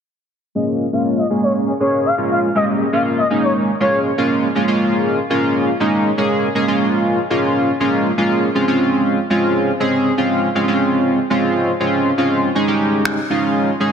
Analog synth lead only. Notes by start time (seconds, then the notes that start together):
0.55 D#5
0.93 F5
1.18 D#5
1.43 C#5
1.81 C#5
2.06 F5
2.31 F5
2.55 D#5
2.93 F5
3.18 D#5
3.43 C#5
3.81 C#5